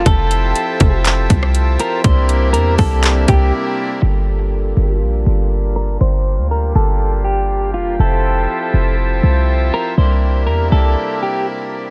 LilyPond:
<<
  \new Staff \with { instrumentName = "Clean electric guitar" } { \time 4/4 \key g \dorian \tempo 4 = 121 a'2 r4. bes'8 | c''4 bes'8 a'4 g'8 r4 | a'2 r4. bes'8 | c''4 bes'8 a'4 g'4 f'8 |
a'2 r4. bes'8 | c''4 bes'8 a'4 g'8 r4 | }
  \new Staff \with { instrumentName = "Harmonium" } { \time 4/4 \key g \dorian <g' a'>1 | d'1 | a'1 | g'1~ |
g'1 | d'1 | }
  \new Staff \with { instrumentName = "Harmonium" } { \time 4/4 \key g \dorian <f c' e'>1 | <c g bes e'>1 | <g bes d' f'>1~ | <g bes d' f'>1 |
<f c' e' a'>1 | <c g bes>1 | }
  \new Staff \with { instrumentName = "808-style bass" } { \clef bass \time 4/4 \key g \dorian f,,4 r8 f,,4 c,4 r8 | c,4 e,8 c,4 c,8 r4 | g,,4. g,,8 bes,,8 g,,4. | g,,8. d,8. g,,2 f,,8 |
f,,4 r8 f,,4 c,4 r8 | c,4 e,8 c,8 r2 | }
  \new DrumStaff \with { instrumentName = "Drums" } \drummode { \time 4/4 <hh bd>8 hh8 hh8 <hh bd>8 <hc hh>8 <hh bd>16 ss16 hh8 hh8 | <hh bd>8 hh8 hh8 <hho bd>8 <hc hh>8 <hh bd>8 r4 | r4 r4 r4 r4 | r4 r4 r4 r4 |
r4 r4 r4 r4 | r4 r4 r4 r4 | }
>>